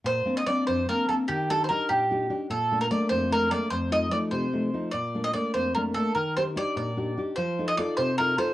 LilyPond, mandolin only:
\new Staff \with { instrumentName = "Mandolin" } { \time 6/8 \key bes \major \tempo 4. = 98 c''8. ees''16 d''8 c''8 bes'8 a'8 | g'8 a'16. c''32 bes'8 g'4~ g'32 r16. | a'8. bes'16 d''8 c''8 bes'8 d''8 | c''8 ees''8 d''8 c''4. |
d''8. ees''16 d''8 c''8 bes'8 a'8 | bes'8 c''8 d''8 d''4~ d''32 r16. | c''8. ees''16 d''8 c''8 bes'8 c''8 | }